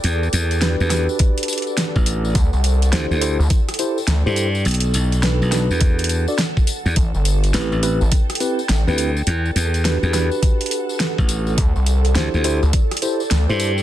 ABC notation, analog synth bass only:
X:1
M:4/4
L:1/16
Q:"Swing 16ths" 1/4=104
K:Em
V:1 name="Analog synth bass" clef=bass
z16 | D,, C,,3 z3 D,, z4 D,, z3 | z16 | A,,, G,,,3 z3 A,,, z4 A,,, z3 |
z16 | D,, C,,3 z3 D,, z4 D,, z3 |]